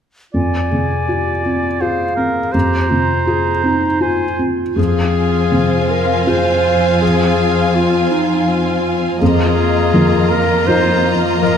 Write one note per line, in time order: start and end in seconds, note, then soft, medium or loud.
0.33 2.50 F2 soft
0.33 0.72 F4 soft
0.33 1.83 D5 soft
0.33 1.82 G#5 soft
0.71 1.31 C3 soft
0.71 1.07 G#4 soft
1.08 1.67 F4 soft
1.08 1.46 G4 soft
1.44 2.04 C4 soft
1.44 1.82 F4 soft
1.80 2.40 F4 soft
1.80 2.54 G#4 soft
1.80 2.16 C5 soft
1.80 2.53 F5 soft
2.16 2.76 C4 soft
2.16 2.54 A#4 soft
2.52 4.74 F2 soft
2.52 2.91 G4 soft
2.52 4.01 C5 soft
2.52 4.03 A#5 soft
2.89 3.50 C3 soft
2.89 3.28 F4 soft
3.26 3.87 F4 soft
3.26 3.64 G#4 soft
3.64 4.24 C4 soft
3.64 4.04 D#4 soft
4.01 4.62 F4 soft
4.01 4.78 F4 soft
4.01 4.44 C5 soft
4.01 4.45 G#5 soft
4.39 4.77 C4 soft
4.76 6.97 F2 soft
4.76 9.16 F2 soft
4.76 7.01 F3 soft
4.76 9.17 C4 soft
4.76 9.17 F4 soft
4.76 5.92 G#4 soft
4.76 9.16 F5 soft
4.76 9.16 G#5 soft
5.03 6.02 F4 soft
5.28 5.77 F5 soft
5.52 6.72 C3 soft
5.52 7.75 C5 soft
5.78 7.50 F5 soft
5.91 6.30 A#4 soft
6.03 6.51 F4 soft
6.27 9.16 C4 soft
6.27 6.77 C4 soft
6.27 9.17 F4 soft
6.27 9.17 G#4 soft
6.27 7.01 C5 soft
6.52 7.26 F4 soft
6.78 8.47 C4 soft
7.02 9.21 F3 soft
7.02 7.77 G#4 soft
7.27 8.22 F4 soft
7.51 7.99 F5 soft
7.75 8.13 F4 soft
7.75 9.24 C5 soft
8.00 10.18 F5 soft
8.12 8.50 D#4 soft
8.24 8.72 F4 soft
8.48 8.96 C4 soft
8.48 9.04 F4 soft
8.73 9.44 F4 soft
8.97 9.24 C4 soft
9.19 11.57 F2 soft
9.19 11.37 F2 soft
9.19 11.40 F3 soft
9.19 11.57 A#3 soft
9.19 11.57 F4 soft
9.19 10.32 G#4 medium
9.19 11.57 D#5 soft
9.19 11.57 A#5 soft
9.46 10.66 F4 soft
9.94 11.11 F3 soft
9.94 11.57 A#4 soft
10.19 11.57 F5 soft
10.30 10.69 A#4 medium
10.67 11.57 D#4 soft
10.67 11.16 F4 soft
10.67 11.57 F4 soft
10.67 11.57 A#4 soft
10.67 11.15 C5 medium
10.92 11.57 A#3 soft
11.17 11.57 F4 soft
11.41 11.57 F3 soft
11.41 11.57 A#4 medium